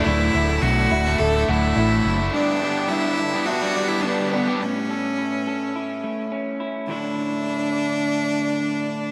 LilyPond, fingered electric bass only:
\new Staff \with { instrumentName = "Fingered electric bass" } { \clef bass \time 4/4 \key d \major \tempo 4 = 105 d,,8 d,,8 b,,8 d,,8 d,,8 d,,8 a,,8 fis,,8 | r1 | r1 | r1 | }